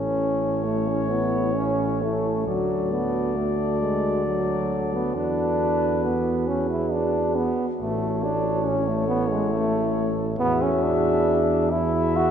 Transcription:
Already playing: A1 C#4 E4 A4 C#5
0.64 A3
0.88 C#4
1.10 B3
1.55 C#4
2.02 A3
2.46 D2 F#3 F#4 D5
2.92 B3
3.36 A3
3.81 G#3
4.27 F#3
4.94 B3
5.15 E2 D4 B4
6.04 B3
6.47 C#4 G#4
6.70 E4
6.92 D4
7.35 B3
7.80 A1 A3 A4 C#5
8.24 D4
8.66 C#4
8.88 A3
9.08 B3 E4
9.31 G#3
9.51 A3
10.38 E2 B3 F#4 G#4 E5
10.62 C#4
10.84 D4
11.71 E4 F#4 G#4 E5
12.17 F#4

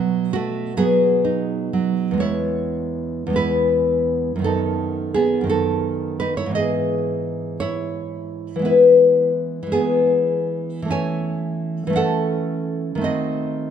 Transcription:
Already playing: B2 F#3
0.33 A3 F#4
0.77 F#3 B3 G#4
1.25 D#4
1.73 F#3
2.11 E2 G#3
2.18 B3 E4 C#5
3.27 E2 G#3
3.33 B3 E4 B4
4.36 F#2 D#3
4.42 B3 A4
4.46 D#4
5.14 B3 G#4
5.41 F#2 D#3
5.47 B3 D#4 A4
6.20 D#4 B4
6.37 E4 C#5
6.46 G#2 E3
6.51 B3 D#5
6.56 G#4
7.60 E4 C#5
8.56 E3 G#3
8.62 B3 E4 B4
9.63 E3
9.67 G#3
9.72 B3 G#4
10.82 E3 A3
10.88 C#4 C#5 G#5
11.87 E3 A3
11.93 C#4 A4 F#5
12.95 D#3 A3
13.02 C4 F#4 D#5

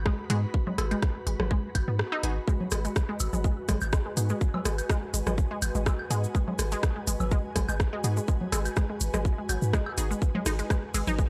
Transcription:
Already playing: F#4 B4 B5
0.06 G#3, kick, cross-stick
0.30 G#2 G#3 B3 D#4 F#4 G#4, closed hi-hat
0.54 kick
0.67 G#3, low conga
0.78 G#1, cross-stick, closed hi-hat, high woodblock
0.91 G#3, closed hi-hat, claves
1.02 kick, cross-stick, closed hi-hat
1.27 G#1 G#3, closed hi-hat
1.40 G#1, cross-stick, low conga
1.51 G#3, kick
1.75 G#1, kick, closed hi-hat, claves
1.88 G#2 B3
1.99 cross-stick
2.12 D#4, claves, high woodblock
2.23 G#1 B3 D#4 F#4 G#4, closed hi-hat
2.48 G#3, kick, shaker
2.61 low conga
2.71 G#1 G#3, cross-stick, closed hi-hat, shaker
2.85 G#3 G#5, closed hi-hat, shaker
2.96 kick, cross-stick, closed hi-hat, shaker
3.09 G#3
3.20 G#1, closed hi-hat, high woodblock, shaker
3.33 G#1 G#3, low conga, shaker
3.44 G#3, kick, shaker
3.69 G#1 G#3, kick, cross-stick, closed hi-hat, low conga, shaker
3.81 G#1, claves, shaker
3.93 G#3, kick, cross-stick, shaker
4.06 G#3
4.17 G#2 B3 D#4 F#4 G#4, closed hi-hat, shaker
4.29 G#3, shaker
4.41 kick, shaker
4.54 G#3, low conga, high woodblock
4.65 G#1 G#3, cross-stick, closed hi-hat, shaker
4.78 closed hi-hat, claves, shaker
4.89 G#3, kick, cross-stick, closed hi-hat, shaker
5.14 G#1 G#3, closed hi-hat, shaker
5.27 G#1 G#3, cross-stick, low conga, shaker
5.38 kick, shaker
5.51 G#3
5.62 G#1, closed hi-hat, claves, shaker
5.75 G#1 G#3, shaker
5.86 G#3, kick, cross-stick, high woodblock, shaker
5.99 claves
6.10 G#2 G#3 B3 D#4 F#4 G#4, closed hi-hat, shaker
6.24 shaker
6.35 G#3, kick, shaker
6.48 G#3, low conga
6.59 G#1, cross-stick, closed hi-hat, shaker
6.72 G#3, closed hi-hat, shaker
6.83 kick, cross-stick, closed hi-hat, shaker
6.96 G#3
7.07 G#1 G#3, closed hi-hat, shaker
7.20 G#1, low conga, high woodblock, shaker
7.31 G#3, kick, shaker
7.56 G#1 G#3, kick, cross-stick, closed hi-hat, low conga, shaker
7.68 G#1 G#3, claves, shaker
7.80 kick, cross-stick, shaker
7.93 G#3
8.04 G#2 B3 D#4 F#4 G#4, closed hi-hat, shaker
8.17 G#3, shaker
8.28 G#3, kick, shaker
8.41 low conga
8.52 G#1 G#3, cross-stick, closed hi-hat, high woodblock, shaker
8.65 closed hi-hat, claves, shaker
8.76 G#3, kick, cross-stick, closed hi-hat, shaker
8.90 G#3
9.00 G#1, closed hi-hat, shaker
9.14 G#1 G#3, cross-stick, low conga, shaker
9.25 kick, shaker
9.38 G#3
9.49 G#1 F#3, closed hi-hat, claves, shaker
9.62 G#2, shaker
9.73 G#3, kick, cross-stick, shaker
9.86 claves, high woodblock
9.98 G#1 B3 D#4 F#4 G#4, closed hi-hat, shaker
10.11 G#3, shaker
10.22 kick, shaker
10.35 G#3, low conga
10.46 G#1 D#4, cross-stick, closed hi-hat, ride, shaker
10.59 G#3 F#5, closed hi-hat, shaker
10.70 G#3, kick, cross-stick, closed hi-hat, shaker
10.94 G#1 G#3, closed hi-hat, ride, high woodblock, shaker
11.07 G#1 D#4, low conga, shaker
11.19 G#3, kick, shaker

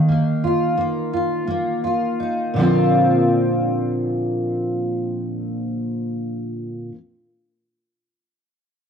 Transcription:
Already playing: D#3
0.09 A#3
0.44 F4
0.77 A#3
1.13 F4
1.47 A#3
1.84 F4
2.20 D#4
2.54 A#2 D3
2.58 F3 A#3 C4
2.62 F4

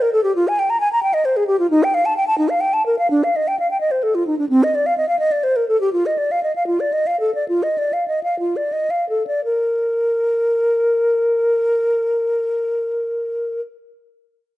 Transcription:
0.02 A#4
0.13 A4
0.24 G4
0.35 F4
0.48 G#5
0.59 G5
0.70 A#5
0.80 G#5
0.93 A#5
1.03 G5
1.14 D#5
1.25 C5
1.36 G#4
1.47 G4
1.59 F4
1.70 D#4
1.83 G5
1.94 F5
2.05 A5
2.17 G5
2.27 A5
2.38 D#4
2.49 F5
2.61 G5
2.73 A5
2.86 A#4
2.99 F5
3.11 D4
3.24 F5
3.36 D#5
3.48 G5
3.59 F5
3.71 G5
3.81 D#5
3.91 C5
4.03 A4
4.15 F4
4.27 D#4
4.39 D4
4.49 C4
4.63 D#5
4.75 D5
4.86 F5
4.98 D#5
5.09 F5
5.19 D#5
5.32 D5
5.44 C5
5.56 A#4
5.69 A4
5.81 G4
5.93 F4
6.06 D#5
6.18 D5
6.31 F5
6.43 D#5
6.56 F5
6.67 F4
6.80 D5
6.93 D#5
7.07 F5
7.20 A4
7.35 D5
7.49 F4
7.63 D#5
7.78 D5
7.93 F5
8.08 D#5
8.23 F5
8.39 F4
8.56 D5
8.73 D#5
8.90 F5
9.09 A4
9.27 D5
9.45 A#4

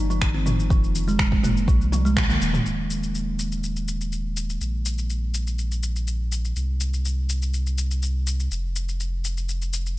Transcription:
Already playing: G1
0.10 F3, shaker
0.21 D#3, finger snap, kick, shaker
0.34 C4
0.46 F3, mid tom, shaker
0.60 shaker
0.70 F1 F3, kick, shaker
0.84 shaker
0.95 shaker
1.08 G#3, shaker
1.19 G#3, finger snap, kick, mid tom, shaker
1.32 kick
1.43 F1 A#3, mid tom, shaker
1.57 shaker
1.68 C2 F3, kick, shaker
1.81 shaker
1.92 F3, high tom, shaker
2.05 G#3, shaker
2.17 D#3, finger snap, kick, mid tom, shaker
2.29 A#3, mid tom, shaker
2.41 D#1, shaker
2.54 mid tom, shaker
2.65 D#1, shaker
2.90 shaker
3.03 shaker
3.15 shaker
3.39 shaker
3.52 shaker
3.64 shaker
3.76 shaker
3.88 shaker
4.01 shaker
4.12 shaker
4.37 shaker
4.50 shaker
4.61 A#1, shaker
4.86 shaker
4.98 shaker
5.10 shaker
5.34 shaker
5.47 shaker
5.59 shaker
5.72 shaker
5.83 shaker
5.96 shaker
6.07 shaker
6.32 shaker
6.45 shaker
6.56 C2, shaker
6.81 shaker
6.94 shaker
7.05 shaker
7.29 shaker
7.42 shaker
7.54 shaker
7.67 shaker
7.78 shaker
7.91 shaker
8.03 shaker
8.27 shaker
8.40 shaker
8.51 F1, shaker
8.76 shaker
8.89 shaker
9.00 shaker
9.24 shaker
9.37 shaker
9.49 shaker
9.62 shaker
9.73 shaker
9.86 shaker

